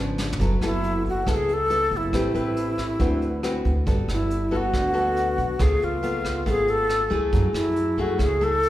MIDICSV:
0, 0, Header, 1, 5, 480
1, 0, Start_track
1, 0, Key_signature, 3, "minor"
1, 0, Tempo, 433213
1, 442, Time_signature, 4, 2, 24, 8
1, 9630, End_track
2, 0, Start_track
2, 0, Title_t, "Alto flute"
2, 0, Program_c, 0, 73
2, 0, Note_on_c, 0, 61, 74
2, 225, Note_off_c, 0, 61, 0
2, 712, Note_on_c, 0, 64, 93
2, 1144, Note_off_c, 0, 64, 0
2, 1211, Note_on_c, 0, 66, 82
2, 1411, Note_off_c, 0, 66, 0
2, 1466, Note_on_c, 0, 68, 91
2, 1700, Note_on_c, 0, 69, 108
2, 1717, Note_off_c, 0, 68, 0
2, 2181, Note_on_c, 0, 64, 91
2, 2198, Note_off_c, 0, 69, 0
2, 4070, Note_off_c, 0, 64, 0
2, 4585, Note_on_c, 0, 64, 83
2, 5058, Note_on_c, 0, 66, 100
2, 5075, Note_off_c, 0, 64, 0
2, 6228, Note_on_c, 0, 68, 90
2, 6245, Note_off_c, 0, 66, 0
2, 6472, Note_on_c, 0, 65, 90
2, 6488, Note_off_c, 0, 68, 0
2, 7176, Note_off_c, 0, 65, 0
2, 7196, Note_on_c, 0, 68, 92
2, 7422, Note_on_c, 0, 69, 104
2, 7439, Note_off_c, 0, 68, 0
2, 7891, Note_off_c, 0, 69, 0
2, 8371, Note_on_c, 0, 64, 92
2, 8873, Note_on_c, 0, 66, 82
2, 8890, Note_off_c, 0, 64, 0
2, 9097, Note_off_c, 0, 66, 0
2, 9114, Note_on_c, 0, 68, 97
2, 9347, Note_on_c, 0, 69, 115
2, 9363, Note_off_c, 0, 68, 0
2, 9630, Note_off_c, 0, 69, 0
2, 9630, End_track
3, 0, Start_track
3, 0, Title_t, "Nylon-string guitar"
3, 0, Program_c, 1, 24
3, 0, Note_on_c, 1, 49, 52
3, 0, Note_on_c, 1, 53, 51
3, 0, Note_on_c, 1, 59, 48
3, 0, Note_on_c, 1, 62, 57
3, 403, Note_off_c, 1, 53, 0
3, 406, Note_off_c, 1, 59, 0
3, 407, Note_off_c, 1, 62, 0
3, 425, Note_off_c, 1, 49, 0
3, 446, Note_on_c, 1, 54, 50
3, 453, Note_on_c, 1, 64, 46
3, 454, Note_on_c, 1, 59, 48
3, 458, Note_on_c, 1, 69, 47
3, 587, Note_off_c, 1, 59, 0
3, 589, Note_off_c, 1, 64, 0
3, 590, Note_off_c, 1, 69, 0
3, 687, Note_on_c, 1, 59, 52
3, 693, Note_on_c, 1, 64, 57
3, 700, Note_on_c, 1, 69, 62
3, 1366, Note_off_c, 1, 59, 0
3, 1369, Note_off_c, 1, 64, 0
3, 1372, Note_off_c, 1, 69, 0
3, 1380, Note_off_c, 1, 54, 0
3, 1404, Note_on_c, 1, 49, 56
3, 1410, Note_on_c, 1, 59, 52
3, 1410, Note_on_c, 1, 64, 53
3, 1415, Note_on_c, 1, 69, 67
3, 1713, Note_off_c, 1, 59, 0
3, 1715, Note_off_c, 1, 69, 0
3, 1716, Note_off_c, 1, 64, 0
3, 1880, Note_on_c, 1, 59, 53
3, 1884, Note_on_c, 1, 64, 55
3, 1892, Note_on_c, 1, 69, 54
3, 2339, Note_off_c, 1, 49, 0
3, 2341, Note_off_c, 1, 59, 0
3, 2344, Note_off_c, 1, 64, 0
3, 2346, Note_off_c, 1, 69, 0
3, 2367, Note_on_c, 1, 57, 54
3, 2373, Note_on_c, 1, 60, 54
3, 2374, Note_on_c, 1, 67, 54
3, 2379, Note_on_c, 1, 71, 58
3, 2568, Note_off_c, 1, 60, 0
3, 2569, Note_off_c, 1, 67, 0
3, 2572, Note_off_c, 1, 71, 0
3, 2597, Note_on_c, 1, 60, 56
3, 2605, Note_on_c, 1, 67, 58
3, 2608, Note_on_c, 1, 71, 61
3, 3282, Note_off_c, 1, 60, 0
3, 3282, Note_off_c, 1, 71, 0
3, 3283, Note_off_c, 1, 67, 0
3, 3300, Note_off_c, 1, 57, 0
3, 3317, Note_on_c, 1, 50, 58
3, 3322, Note_on_c, 1, 60, 54
3, 3323, Note_on_c, 1, 66, 53
3, 3328, Note_on_c, 1, 71, 55
3, 3629, Note_off_c, 1, 60, 0
3, 3631, Note_off_c, 1, 66, 0
3, 3633, Note_off_c, 1, 71, 0
3, 3801, Note_on_c, 1, 60, 56
3, 3806, Note_on_c, 1, 66, 59
3, 3809, Note_on_c, 1, 71, 61
3, 4123, Note_off_c, 1, 60, 0
3, 4126, Note_off_c, 1, 66, 0
3, 4126, Note_off_c, 1, 71, 0
3, 4255, Note_off_c, 1, 50, 0
3, 4278, Note_on_c, 1, 55, 47
3, 4282, Note_on_c, 1, 59, 53
3, 4287, Note_on_c, 1, 66, 47
3, 4294, Note_on_c, 1, 69, 55
3, 4757, Note_off_c, 1, 59, 0
3, 4759, Note_off_c, 1, 66, 0
3, 4764, Note_off_c, 1, 69, 0
3, 4999, Note_on_c, 1, 59, 61
3, 5006, Note_on_c, 1, 66, 58
3, 5009, Note_on_c, 1, 69, 68
3, 5216, Note_off_c, 1, 55, 0
3, 5246, Note_on_c, 1, 50, 53
3, 5441, Note_off_c, 1, 59, 0
3, 5445, Note_off_c, 1, 66, 0
3, 5445, Note_off_c, 1, 69, 0
3, 5466, Note_on_c, 1, 59, 58
3, 5470, Note_on_c, 1, 66, 60
3, 5478, Note_on_c, 1, 69, 64
3, 6174, Note_off_c, 1, 59, 0
3, 6174, Note_off_c, 1, 66, 0
3, 6179, Note_off_c, 1, 50, 0
3, 6180, Note_off_c, 1, 69, 0
3, 6202, Note_on_c, 1, 49, 56
3, 6208, Note_on_c, 1, 57, 50
3, 6211, Note_on_c, 1, 59, 52
3, 6211, Note_on_c, 1, 65, 53
3, 6644, Note_off_c, 1, 59, 0
3, 6645, Note_off_c, 1, 57, 0
3, 6647, Note_off_c, 1, 65, 0
3, 6678, Note_on_c, 1, 57, 60
3, 6686, Note_on_c, 1, 59, 49
3, 6686, Note_on_c, 1, 65, 58
3, 7121, Note_off_c, 1, 57, 0
3, 7123, Note_off_c, 1, 59, 0
3, 7125, Note_off_c, 1, 65, 0
3, 7138, Note_off_c, 1, 49, 0
3, 7159, Note_on_c, 1, 57, 59
3, 7165, Note_on_c, 1, 59, 50
3, 7169, Note_on_c, 1, 65, 57
3, 7841, Note_off_c, 1, 57, 0
3, 7844, Note_off_c, 1, 59, 0
3, 7845, Note_off_c, 1, 65, 0
3, 7865, Note_on_c, 1, 57, 62
3, 7871, Note_on_c, 1, 64, 58
3, 7877, Note_on_c, 1, 68, 61
3, 8116, Note_on_c, 1, 54, 45
3, 8794, Note_off_c, 1, 57, 0
3, 8797, Note_off_c, 1, 64, 0
3, 8800, Note_off_c, 1, 68, 0
3, 8842, Note_on_c, 1, 57, 56
3, 8850, Note_on_c, 1, 64, 63
3, 8855, Note_on_c, 1, 68, 62
3, 9054, Note_off_c, 1, 54, 0
3, 9067, Note_on_c, 1, 49, 54
3, 9283, Note_off_c, 1, 57, 0
3, 9287, Note_off_c, 1, 64, 0
3, 9289, Note_off_c, 1, 68, 0
3, 9318, Note_on_c, 1, 57, 59
3, 9324, Note_on_c, 1, 64, 57
3, 9630, Note_off_c, 1, 49, 0
3, 9630, Note_off_c, 1, 57, 0
3, 9630, Note_off_c, 1, 64, 0
3, 9630, End_track
4, 0, Start_track
4, 0, Title_t, "Upright bass"
4, 0, Program_c, 2, 32
4, 0, Note_on_c, 2, 32, 88
4, 398, Note_off_c, 2, 32, 0
4, 439, Note_on_c, 2, 30, 90
4, 664, Note_off_c, 2, 30, 0
4, 675, Note_on_c, 2, 30, 76
4, 1354, Note_off_c, 2, 30, 0
4, 1405, Note_on_c, 2, 37, 90
4, 2078, Note_off_c, 2, 37, 0
4, 2119, Note_on_c, 2, 30, 92
4, 2343, Note_off_c, 2, 30, 0
4, 2358, Note_on_c, 2, 33, 89
4, 2582, Note_off_c, 2, 33, 0
4, 2590, Note_on_c, 2, 33, 78
4, 3271, Note_off_c, 2, 33, 0
4, 3322, Note_on_c, 2, 38, 93
4, 3996, Note_off_c, 2, 38, 0
4, 4045, Note_on_c, 2, 38, 99
4, 4266, Note_off_c, 2, 38, 0
4, 4288, Note_on_c, 2, 31, 103
4, 4507, Note_off_c, 2, 31, 0
4, 4521, Note_on_c, 2, 31, 80
4, 5196, Note_off_c, 2, 31, 0
4, 5246, Note_on_c, 2, 38, 81
4, 5918, Note_off_c, 2, 38, 0
4, 5964, Note_on_c, 2, 35, 84
4, 6185, Note_off_c, 2, 35, 0
4, 6203, Note_on_c, 2, 37, 92
4, 6425, Note_off_c, 2, 37, 0
4, 6432, Note_on_c, 2, 37, 80
4, 7111, Note_off_c, 2, 37, 0
4, 7156, Note_on_c, 2, 32, 86
4, 7834, Note_off_c, 2, 32, 0
4, 7876, Note_on_c, 2, 37, 91
4, 8101, Note_off_c, 2, 37, 0
4, 8120, Note_on_c, 2, 42, 99
4, 8336, Note_off_c, 2, 42, 0
4, 8343, Note_on_c, 2, 42, 82
4, 9027, Note_off_c, 2, 42, 0
4, 9077, Note_on_c, 2, 37, 93
4, 9630, Note_off_c, 2, 37, 0
4, 9630, End_track
5, 0, Start_track
5, 0, Title_t, "Drums"
5, 201, Note_on_c, 9, 38, 39
5, 312, Note_off_c, 9, 38, 0
5, 361, Note_on_c, 9, 43, 54
5, 441, Note_on_c, 9, 36, 55
5, 447, Note_on_c, 9, 42, 43
5, 472, Note_off_c, 9, 43, 0
5, 552, Note_off_c, 9, 36, 0
5, 557, Note_off_c, 9, 42, 0
5, 682, Note_on_c, 9, 37, 52
5, 682, Note_on_c, 9, 42, 24
5, 793, Note_off_c, 9, 37, 0
5, 793, Note_off_c, 9, 42, 0
5, 924, Note_on_c, 9, 42, 41
5, 1035, Note_off_c, 9, 42, 0
5, 1161, Note_on_c, 9, 36, 23
5, 1166, Note_on_c, 9, 42, 24
5, 1272, Note_off_c, 9, 36, 0
5, 1277, Note_off_c, 9, 42, 0
5, 1403, Note_on_c, 9, 36, 54
5, 1407, Note_on_c, 9, 37, 53
5, 1407, Note_on_c, 9, 42, 40
5, 1514, Note_off_c, 9, 36, 0
5, 1518, Note_off_c, 9, 37, 0
5, 1518, Note_off_c, 9, 42, 0
5, 1646, Note_on_c, 9, 42, 29
5, 1757, Note_off_c, 9, 42, 0
5, 1883, Note_on_c, 9, 42, 42
5, 1994, Note_off_c, 9, 42, 0
5, 2120, Note_on_c, 9, 42, 29
5, 2121, Note_on_c, 9, 36, 26
5, 2231, Note_off_c, 9, 42, 0
5, 2232, Note_off_c, 9, 36, 0
5, 2361, Note_on_c, 9, 36, 59
5, 2362, Note_on_c, 9, 37, 60
5, 2362, Note_on_c, 9, 42, 45
5, 2472, Note_off_c, 9, 36, 0
5, 2473, Note_off_c, 9, 37, 0
5, 2473, Note_off_c, 9, 42, 0
5, 2605, Note_on_c, 9, 42, 29
5, 2715, Note_off_c, 9, 42, 0
5, 2844, Note_on_c, 9, 42, 46
5, 2955, Note_off_c, 9, 42, 0
5, 3081, Note_on_c, 9, 36, 23
5, 3082, Note_on_c, 9, 37, 51
5, 3082, Note_on_c, 9, 42, 29
5, 3192, Note_off_c, 9, 36, 0
5, 3192, Note_off_c, 9, 37, 0
5, 3192, Note_off_c, 9, 42, 0
5, 3321, Note_on_c, 9, 42, 38
5, 3322, Note_on_c, 9, 36, 59
5, 3431, Note_off_c, 9, 42, 0
5, 3433, Note_off_c, 9, 36, 0
5, 3564, Note_on_c, 9, 42, 28
5, 3675, Note_off_c, 9, 42, 0
5, 3805, Note_on_c, 9, 37, 56
5, 3805, Note_on_c, 9, 42, 42
5, 3915, Note_off_c, 9, 37, 0
5, 3915, Note_off_c, 9, 42, 0
5, 4045, Note_on_c, 9, 36, 25
5, 4052, Note_on_c, 9, 42, 28
5, 4156, Note_off_c, 9, 36, 0
5, 4163, Note_off_c, 9, 42, 0
5, 4286, Note_on_c, 9, 36, 59
5, 4289, Note_on_c, 9, 42, 39
5, 4397, Note_off_c, 9, 36, 0
5, 4400, Note_off_c, 9, 42, 0
5, 4528, Note_on_c, 9, 37, 54
5, 4528, Note_on_c, 9, 42, 27
5, 4639, Note_off_c, 9, 37, 0
5, 4639, Note_off_c, 9, 42, 0
5, 4769, Note_on_c, 9, 42, 43
5, 4880, Note_off_c, 9, 42, 0
5, 5007, Note_on_c, 9, 36, 22
5, 5014, Note_on_c, 9, 42, 26
5, 5118, Note_off_c, 9, 36, 0
5, 5125, Note_off_c, 9, 42, 0
5, 5247, Note_on_c, 9, 36, 55
5, 5249, Note_on_c, 9, 37, 52
5, 5249, Note_on_c, 9, 42, 38
5, 5358, Note_off_c, 9, 36, 0
5, 5360, Note_off_c, 9, 37, 0
5, 5360, Note_off_c, 9, 42, 0
5, 5487, Note_on_c, 9, 42, 25
5, 5597, Note_off_c, 9, 42, 0
5, 5723, Note_on_c, 9, 42, 41
5, 5834, Note_off_c, 9, 42, 0
5, 5961, Note_on_c, 9, 42, 28
5, 5962, Note_on_c, 9, 36, 28
5, 6072, Note_off_c, 9, 42, 0
5, 6073, Note_off_c, 9, 36, 0
5, 6198, Note_on_c, 9, 37, 59
5, 6198, Note_on_c, 9, 42, 41
5, 6201, Note_on_c, 9, 36, 63
5, 6309, Note_off_c, 9, 37, 0
5, 6309, Note_off_c, 9, 42, 0
5, 6312, Note_off_c, 9, 36, 0
5, 6446, Note_on_c, 9, 42, 27
5, 6556, Note_off_c, 9, 42, 0
5, 6684, Note_on_c, 9, 42, 44
5, 6795, Note_off_c, 9, 42, 0
5, 6919, Note_on_c, 9, 36, 24
5, 6922, Note_on_c, 9, 37, 57
5, 6922, Note_on_c, 9, 42, 30
5, 7030, Note_off_c, 9, 36, 0
5, 7033, Note_off_c, 9, 37, 0
5, 7033, Note_off_c, 9, 42, 0
5, 7160, Note_on_c, 9, 36, 56
5, 7165, Note_on_c, 9, 42, 41
5, 7271, Note_off_c, 9, 36, 0
5, 7275, Note_off_c, 9, 42, 0
5, 7402, Note_on_c, 9, 42, 28
5, 7513, Note_off_c, 9, 42, 0
5, 7641, Note_on_c, 9, 37, 55
5, 7641, Note_on_c, 9, 42, 41
5, 7752, Note_off_c, 9, 37, 0
5, 7752, Note_off_c, 9, 42, 0
5, 7879, Note_on_c, 9, 36, 27
5, 7881, Note_on_c, 9, 42, 30
5, 7990, Note_off_c, 9, 36, 0
5, 7992, Note_off_c, 9, 42, 0
5, 8119, Note_on_c, 9, 36, 65
5, 8119, Note_on_c, 9, 42, 45
5, 8230, Note_off_c, 9, 36, 0
5, 8230, Note_off_c, 9, 42, 0
5, 8360, Note_on_c, 9, 37, 62
5, 8360, Note_on_c, 9, 42, 23
5, 8470, Note_off_c, 9, 37, 0
5, 8470, Note_off_c, 9, 42, 0
5, 8600, Note_on_c, 9, 42, 41
5, 8710, Note_off_c, 9, 42, 0
5, 8838, Note_on_c, 9, 36, 24
5, 8839, Note_on_c, 9, 42, 25
5, 8949, Note_off_c, 9, 36, 0
5, 8950, Note_off_c, 9, 42, 0
5, 9078, Note_on_c, 9, 36, 57
5, 9078, Note_on_c, 9, 37, 57
5, 9078, Note_on_c, 9, 42, 37
5, 9189, Note_off_c, 9, 36, 0
5, 9189, Note_off_c, 9, 37, 0
5, 9189, Note_off_c, 9, 42, 0
5, 9322, Note_on_c, 9, 42, 28
5, 9433, Note_off_c, 9, 42, 0
5, 9561, Note_on_c, 9, 42, 45
5, 9630, Note_off_c, 9, 42, 0
5, 9630, End_track
0, 0, End_of_file